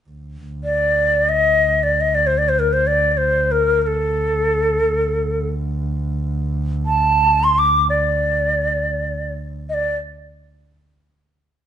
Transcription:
0.09 double bass D2
0.64 ney D5
1.29 ney D#5
1.83 ney D5
2.01 ney D#5
2.15 ney D5
2.27 ney C5
2.38 ney D5
2.49 ney C5
2.59 ney A#4
2.73 ney C5
2.87 ney D5
3.11 ney D5
3.17 ney C5
3.52 ney A#4
3.82 ney A#4
3.87 ney A4
4.89 double bass D2
6.86 ney A5
7.44 ney C6
7.59 ney D6
7.90 ney D5
9.69 ney D#5
9.74 ney D5

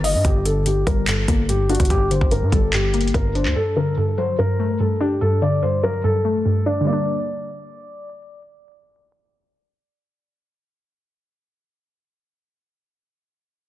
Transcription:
Already playing: 808-style bass G1, analog synth pad D#3 G3 A#3 G4, synth pluck D#3 A#3 D#4
0.04 felt piano D#5, synth pluck D#5, open hi-hat
0.14 808-style bass G2
0.25 808-style bass G1, synth pluck G2, felt piano G4, kick, closed hi-hat
0.45 synth pluck D3, felt piano A4, closed hi-hat
0.66 synth pluck G2, felt piano G4, closed hi-hat
0.87 808-style bass G1, synth pluck G3, felt piano A#4, kick, closed hi-hat
1.07 synth pluck G2, felt piano A4, clap, closed hi-hat
1.28 808-style bass G1, synth pluck A#3, kick, closed hi-hat
1.49 synth pluck G2, felt piano G4, closed hi-hat
1.69 synth pluck D4, felt piano F#4, closed hi-hat
1.75 closed hi-hat
1.80 808-style bass G1, kick, closed hi-hat
1.85 closed hi-hat
1.90 808-style bass G1, synth pluck G2, felt piano G4, kick, closed hi-hat
2.11 synth pluck D3, felt piano C5, closed hi-hat
2.21 808-style bass G1, kick
2.31 synth pluck G2, felt piano A#4, closed hi-hat
2.42 808-style bass G2
2.52 808-style bass G1, synth pluck G3, felt piano A4, kick, closed hi-hat
2.73 synth pluck G2, felt piano G4, clap, closed hi-hat
2.94 synth pluck A#3, closed hi-hat
3.01 closed hi-hat
3.08 closed hi-hat
3.14 808-style bass G1, synth pluck G2, felt piano A#4, kick, closed hi-hat
3.35 synth pluck D4, felt piano C5, closed hi-hat
3.45 808-style bass D2, clap
3.56 synth pluck G2, felt piano A4
3.76 synth pluck D3, felt piano A#4
3.97 synth pluck G2, felt piano A4
4.18 synth pluck F#3, felt piano C5
4.38 synth pluck G2, felt piano A#4
4.59 synth pluck A3
4.80 synth pluck G2, felt piano A4
5.01 synth pluck D4, felt piano G4
5.21 synth pluck G2, felt piano A4
5.42 synth pluck D3, felt piano D5
5.63 synth pluck G2, felt piano C5
5.83 synth pluck F#3, felt piano A#4
6.04 synth pluck G2, felt piano A4
6.25 synth pluck A3
6.45 synth pluck G2
6.66 synth pluck D4, felt piano D5
6.81 synth pluck D3 G3
6.87 synth pluck A#3, felt piano D5
6.93 synth pluck D4

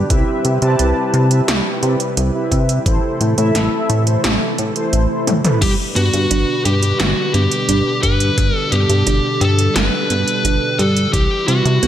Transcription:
Already playing: analog synth pad G4
0.10 analog synth bass C2, analog synth pad C3 G3 E4 B4, analog polysynth C4 E4 G4 B4 E5, kick, closed hi-hat
0.45 analog synth bass C3, closed hi-hat
0.62 analog synth bass C3, analog polysynth C4 E4 G4 B4 A5, closed hi-hat
0.79 analog synth bass C2, closed hi-hat
1.14 analog synth bass C3, closed hi-hat
1.31 analog polysynth C4 E4 G4 B4 E5, closed hi-hat
1.48 analog synth bass C2, snare, closed hi-hat
1.83 analog synth bass C3, analog polysynth C4 E4 G4 B4 D5, closed hi-hat
2.00 closed hi-hat
2.17 analog synth bass C2, closed hi-hat
2.35 analog polysynth C4 E4 G4 B4 E5
2.52 analog synth bass C3, kick, closed hi-hat
2.69 closed hi-hat
2.86 analog synth bass A1, analog synth pad E3 A3 A4, analog polysynth E4 A4 C5, kick, closed hi-hat
3.21 analog synth bass A2, closed hi-hat
3.38 analog synth bass A2, analog polysynth E4 A4 E5, closed hi-hat
3.55 analog synth bass A1, snare, closed hi-hat
3.90 analog synth bass A2, closed hi-hat
4.07 analog polysynth E4 A4 C5, closed hi-hat
4.24 analog synth bass A1, snare, closed hi-hat
4.58 analog synth bass A2, closed hi-hat
4.76 analog polysynth E4 A4 C5, closed hi-hat
4.93 analog synth bass A1, closed hi-hat
5.10 analog polysynth E4 A4 C5
5.27 analog synth bass A2, closed hi-hat, high tom
5.45 analog polysynth E4 A4 B4, closed hi-hat, mid tom
5.62 analog synth bass G1, analog synth pad B2 D3 G3 D4 B4, synth arpeggio sound G3, lead electric guitar G4, kick, closed hi-hat, crash
5.96 analog synth bass G2, synth arpeggio sound B3, lead electric guitar F#4, closed hi-hat
6.13 analog synth bass G2, closed hi-hat
6.31 analog synth bass G1, synth arpeggio sound D4, closed hi-hat
6.65 analog synth bass G2, lead electric guitar G4, synth arpeggio sound G4, closed hi-hat
6.83 closed hi-hat
6.99 analog synth bass G1, synth arpeggio sound G3, lead electric guitar F#4, snare, closed hi-hat
7.34 analog synth bass G2, synth arpeggio sound B3, lead electric guitar G4, closed hi-hat
7.51 closed hi-hat
7.69 analog synth bass G1, synth arpeggio sound D4, closed hi-hat
8.03 analog synth bass G2, synth arpeggio sound G4, lead electric guitar B4, kick, closed hi-hat
8.20 closed hi-hat
8.38 analog synth bass G1, synth arpeggio sound G3, analog synth pad A4, kick, closed hi-hat
8.56 lead electric guitar A4
8.72 analog synth bass G2, synth arpeggio sound B3, lead electric guitar G4, closed hi-hat
8.90 analog synth bass G2, closed hi-hat
9.07 analog synth bass G1, synth arpeggio sound D4, closed hi-hat
9.41 analog synth bass G2, synth arpeggio sound G4, lead electric guitar A4, closed hi-hat
9.59 closed hi-hat
9.75 analog synth bass G1, synth arpeggio sound G3, lead electric guitar B4, snare, closed hi-hat
10.10 analog synth bass G2, synth arpeggio sound B3, closed hi-hat
10.28 closed hi-hat
10.45 analog synth bass G1, synth arpeggio sound D4, closed hi-hat
10.79 analog synth bass G2, synth arpeggio sound G4, lead electric guitar A4, closed hi-hat
10.97 closed hi-hat
11.13 analog synth bass C2, analog synth pad C3 E3 E4 B4, synth arpeggio sound E3, lead electric guitar G4, kick, closed hi-hat
11.48 analog synth bass C3, synth arpeggio sound G3, lead electric guitar F#4, closed hi-hat
11.65 analog synth bass C3, closed hi-hat
11.83 analog synth bass C2, synth arpeggio sound B3, closed hi-hat

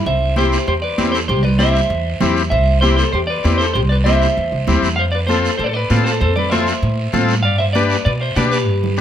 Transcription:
0.06 upright bass C2, clean electric guitar C5 E5, high conga, long guiro
0.36 transistor combo organ C4 E4 G4, clean electric guitar G4 C5, high conga, short guiro
0.52 short guiro
0.67 upright bass E2, clean electric guitar G4 C5, high conga, long guiro
0.82 clean electric guitar B4 D5
0.98 upright bass E2, transistor combo organ C4 E4 G4, high conga, short guiro
1.12 clean electric guitar A4 C5, short guiro
1.28 upright bass C2, clean electric guitar G4 C5, high conga, long guiro
1.43 clean electric guitar B4 D5, low conga
1.59 transistor combo organ C4 E4 G4, clean electric guitar C5 E5, high conga, short guiro
1.75 short guiro
1.90 upright bass E2, high conga, long guiro
2.21 upright bass E2, transistor combo organ C4 E4 G4, high conga, low conga, short guiro
2.36 short guiro
2.50 upright bass C2, clean electric guitar C5 E5, high conga, long guiro
2.81 transistor combo organ C4 E4 G4, clean electric guitar G4 C5, high conga, short guiro
2.96 clean electric guitar A4 C5, short guiro
3.12 upright bass E2, clean electric guitar G4 C5, high conga, long guiro
3.27 clean electric guitar B4 D5
3.44 upright bass E2, transistor combo organ C4 E4 G4, high conga, short guiro
3.58 clean electric guitar A4 C5, short guiro
3.73 upright bass C2, clean electric guitar G4 C5, high conga, long guiro
3.89 clean electric guitar B4 D5
4.04 transistor combo organ C4 E4 G4, clean electric guitar C5 E5, high conga, short guiro
4.22 short guiro
4.37 upright bass E2, high conga, long guiro
4.52 upright bass C2
4.67 upright bass D2, transistor combo organ C4 E4 G4, high conga, low conga, short guiro
4.82 upright bass E2, short guiro
4.96 upright bass F2, clean electric guitar C5 F5, high conga, long guiro
5.12 clean electric guitar B4 D5
5.27 transistor combo organ C4 F4 A4, clean electric guitar A4 C5, high conga, short guiro
5.45 short guiro
5.58 upright bass A2, clean electric guitar A4 C5, high conga, long guiro
5.64 clean electric guitar C5 D5
5.69 clean electric guitar A4
5.74 clean electric guitar B4 D5
5.90 upright bass A2, transistor combo organ C4 F4 A4, high conga, short guiro
6.04 clean electric guitar A4 C5, short guiro
6.21 upright bass F2, clean electric guitar A4 C5, high conga, long guiro
6.36 clean electric guitar B4 D5, low conga
6.50 transistor combo organ C4 F4 A4, clean electric guitar C5 E5, high conga, short guiro
6.67 short guiro
6.82 upright bass A2, high conga, long guiro
7.13 upright bass A2, transistor combo organ C4 F4 A4, high conga, low conga, short guiro
7.29 short guiro
7.43 upright bass G2, clean electric guitar D5 F5, high conga, long guiro
7.58 clean electric guitar C5 E5
7.73 transistor combo organ D4 G4 B4, clean electric guitar B4 D5, high conga, short guiro
7.90 short guiro
8.05 upright bass B2, clean electric guitar B4 D5, high conga, long guiro
8.20 clean electric guitar C5 E5
8.36 upright bass B2, transistor combo organ D4 G4 B4, clean electric guitar D5 F5, high conga, short guiro
8.51 clean electric guitar G4 B4, short guiro
8.66 upright bass G2, high conga, long guiro
8.84 low conga
8.97 transistor combo organ D4, short guiro

